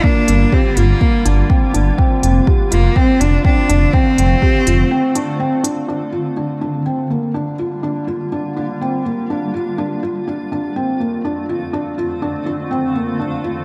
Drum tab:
HH |-x-x-x-x|-x-x-x-x|-x-x-x-x|--------|
BD |o-o-o-o-|o-o-o-o-|o-o-----|--------|

HH |--------|--------|--------|
BD |--------|--------|--------|